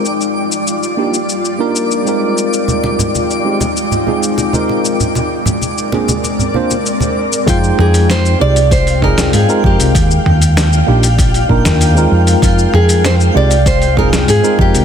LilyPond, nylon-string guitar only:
\new Staff \with { instrumentName = "Nylon-string guitar" } { \time 4/4 \key f \dorian \tempo 4 = 97 r1 | r1 | r1 | f'8 aes'8 c''8 d''8 c''8 bes'8 aes'8 g'8~ |
g'4. r2 r8 | f'8 aes'8 c''8 d''8 c''8 bes'8 aes'8 g'8 | }